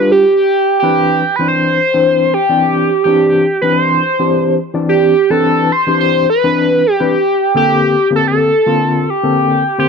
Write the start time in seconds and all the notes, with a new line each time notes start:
Already playing: G3 D4 F4 G4 B4
0.12 G4
0.79 E3 C4 D4 G4
0.84 B4
1.36 E3 C4 D4 B4
1.40 C5
1.48 C5
1.94 E3 C4 D4 C5
2.34 G4
2.49 E3 C4 D4 D5
3.04 E3 C4 D4 G4
3.62 E3 C4 D4 B4
3.73 C5
4.19 E3 C4 D4 G4
4.74 E3 C4 D4 D5
4.89 G4
5.30 E3 C4 D4 A4 B4
5.72 C5
5.86 E3 C4 D4 G4
6.00 C5
6.30 B4
6.43 E3 C4 D4 B4
6.86 G4
7.00 E3 C4 D4 B4
7.54 D3 A#3 C4 G4 A4
8.10 D3 A#3 C4 G4
8.16 A4
8.28 A4
8.66 D3 A#3 C4 F4
9.10 G4
9.23 D3 A#3 C4 A4
9.78 D3 A#3 C4 G4 C5